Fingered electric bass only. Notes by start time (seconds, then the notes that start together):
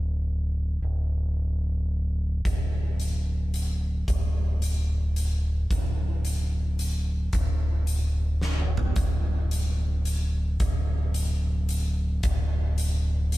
Already playing: D1
0.82 D1
2.45 D1
4.08 D1
5.71 D1
7.34 D1
8.96 D1
10.60 D1
12.24 D1